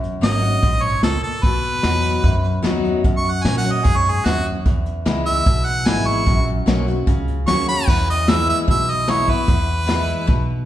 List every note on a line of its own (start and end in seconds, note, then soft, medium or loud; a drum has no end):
0.00 0.59 F#2 medium
0.00 muted upright bass stroke soft
0.00 closed hi-hat medium
0.21 0.61 G#1 medium
0.21 0.42 F#3 medium
0.21 0.42 A#3 medium
0.21 0.42 C#4 medium
0.21 0.41 F#4 medium
0.21 0.84 D#5 loud
0.21 snare loud
0.21 closed hi-hat medium
0.42 0.63 C#4 soft
0.42 0.62 F#4 medium
0.42 closed hi-hat medium
0.62 1.02 A#1 medium
0.62 1.01 G#2 medium
0.62 kick loud
0.62 closed hi-hat medium
0.83 1.03 C#5 medium
0.83 closed hi-hat medium
1.02 1.22 C#2 medium
1.02 1.42 A#2 medium
1.02 1.23 A4 medium
1.02 snare loud
1.02 closed hi-hat medium
1.23 1.45 A4 medium
1.23 muted upright bass stroke soft
1.23 closed hi-hat medium
1.43 1.83 D#2 medium
1.43 2.21 B2 medium
1.43 2.61 B4 loud
1.43 kick loud
1.43 closed hi-hat medium
1.64 closed hi-hat medium
1.83 2.23 E2 medium
1.83 2.22 F#3 medium
1.83 2.22 B3 medium
1.83 2.22 D#4 medium
1.83 2.23 F#4 medium
1.83 snare loud
1.83 closed hi-hat medium
2.03 closed hi-hat medium
2.24 3.00 F#2 medium
2.24 2.63 F#2 medium
2.24 kick loud
2.24 closed hi-hat medium
2.44 closed hi-hat medium
2.62 3.03 D#2 medium
2.62 3.02 F#3 medium
2.62 3.02 B3 medium
2.62 3.02 D#4 loud
2.62 3.03 F#4 medium
2.62 snare loud
2.62 closed hi-hat medium
2.84 closed hi-hat medium
3.04 3.44 F#2 medium
3.04 3.81 F#2 medium
3.04 kick loud
3.04 closed hi-hat medium
3.17 3.34 C#6 medium
3.24 closed hi-hat medium
3.32 3.46 F#5 loud
3.44 3.84 A#2 loud
3.44 3.64 F#3 medium
3.44 3.64 A#3 medium
3.44 3.65 C#4 medium
3.44 3.63 F#4 medium
3.44 3.57 G#5 loud
3.44 snare loud
3.44 closed hi-hat medium
3.58 3.73 F#5 loud
3.64 3.85 C#4 soft
3.64 3.84 F#4 medium
3.64 closed hi-hat medium
3.72 3.87 D#5 medium
3.84 4.24 F#2 medium
3.84 4.23 G#2 medium
3.84 3.99 G#4 loud
3.84 kick loud
3.84 closed hi-hat medium
3.97 4.12 C#5 medium
4.06 closed hi-hat medium
4.11 4.27 G#4 medium
4.25 4.64 D#2 medium
4.25 4.64 F#2 medium
4.25 4.45 F#4 loud
4.25 snare loud
4.25 closed hi-hat medium
4.46 closed hi-hat medium
4.66 5.42 E2 medium
4.66 5.05 E2 medium
4.66 kick loud
4.66 closed hi-hat medium
4.86 closed hi-hat medium
5.06 5.45 C#2 medium
5.06 5.44 E3 medium
5.06 5.44 G#3 medium
5.06 5.44 B3 medium
5.06 5.45 E4 medium
5.06 snare loud
5.06 closed hi-hat medium
5.26 5.68 E5 loud
5.26 closed hi-hat medium
5.46 5.85 B1 medium
5.46 6.22 B2 medium
5.46 kick loud
5.46 closed hi-hat medium
5.66 5.88 F#5 loud
5.66 closed hi-hat medium
5.86 6.25 G#1 medium
5.86 6.24 E3 medium
5.86 6.24 G#3 medium
5.86 6.25 B3 loud
5.86 6.25 E4 loud
5.86 6.09 G#5 loud
5.86 snare loud
5.86 closed hi-hat medium
6.07 6.46 C#6 loud
6.07 closed hi-hat medium
6.26 6.66 A#1 medium
6.26 7.03 F#2 loud
6.26 kick loud
6.26 closed hi-hat medium
6.47 closed hi-hat medium
6.66 7.06 B1 medium
6.66 6.86 F#3 medium
6.66 6.86 A#3 medium
6.66 6.86 C#4 medium
6.66 6.86 F#4 loud
6.66 snare loud
6.66 closed hi-hat medium
6.87 7.07 C#4 soft
6.87 7.06 F#4 medium
6.87 closed hi-hat medium
7.07 7.46 C#2 medium
7.07 7.83 C#3 loud
7.07 kick loud
7.07 closed hi-hat medium
7.28 closed hi-hat medium
7.46 7.86 D#2 medium
7.46 7.66 F#3 medium
7.46 7.67 A#3 medium
7.46 7.67 C#4 loud
7.46 7.66 F#4 loud
7.46 7.67 C#6 loud
7.46 snare loud
7.46 closed hi-hat medium
7.67 7.87 C#4 soft
7.67 7.86 F#4 medium
7.67 7.87 B5 loud
7.67 closed hi-hat medium
7.88 8.51 E2 medium
7.88 8.64 E2 medium
7.88 8.07 B4 loud
7.88 kick loud
7.88 crash loud
8.10 8.31 D#5 loud
8.27 8.65 E3 medium
8.27 8.66 G#3 loud
8.27 8.66 B3 medium
8.27 8.67 E4 loud
8.27 8.49 E5 loud
8.27 snare loud
8.50 8.58 E5 loud
8.68 9.31 B1 medium
8.68 9.44 B2 medium
8.68 8.92 E5 loud
8.68 kick loud
8.68 open hi-hat medium
8.90 9.12 D#5 loud
9.07 9.27 E3 medium
9.07 9.27 G#3 medium
9.07 9.27 B3 loud
9.07 9.26 E4 loud
9.07 9.32 C#5 medium
9.07 snare loud
9.07 open hi-hat medium
9.27 9.48 B3 medium
9.27 9.47 E4 medium
9.27 10.49 B4 medium
9.27 kick medium
9.48 10.24 E2 medium
9.48 10.11 E2 medium
9.48 kick loud
9.48 open hi-hat medium
9.87 10.25 E3 medium
9.87 10.26 G#3 medium
9.87 10.26 B3 medium
9.87 10.26 E4 medium
9.87 snare loud
9.87 open hi-hat medium
10.27 10.65 B1 medium
10.27 10.65 B2 medium
10.27 kick loud
10.27 open hi-hat medium